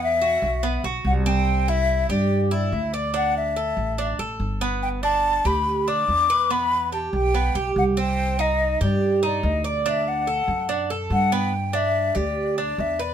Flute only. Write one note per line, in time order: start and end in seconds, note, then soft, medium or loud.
0.04 0.82 E5 loud
1.07 1.13 F#5 medium
1.27 1.71 G5 medium
1.69 2.10 E5 loud
2.10 2.49 D5 medium
2.52 2.75 D5 medium
2.73 2.96 E5 medium
2.95 3.15 D5 medium
3.16 3.35 F#5 medium
3.37 4.16 E5 medium
4.83 4.89 G5 medium
5.04 5.48 A5 loud
5.47 5.90 B5 loud
5.89 6.53 D6 loud
6.52 6.93 B5 loud
6.93 7.12 A5 medium
7.14 7.72 G5 loud
7.78 7.84 F#5 medium
7.98 8.42 G5 medium
8.41 8.82 D#5 medium
8.83 9.21 D5 medium
9.26 9.47 D5 medium
9.45 9.65 D#5 medium
9.67 9.85 D5 medium
9.87 10.10 E5 medium
10.08 10.91 F#5 medium
11.13 11.35 F#5 medium
11.33 11.77 G5 medium
11.75 12.18 E5 medium
12.17 12.58 D5 medium
12.60 12.82 D5 medium
12.80 13.03 E5 medium
13.02 13.14 D5 medium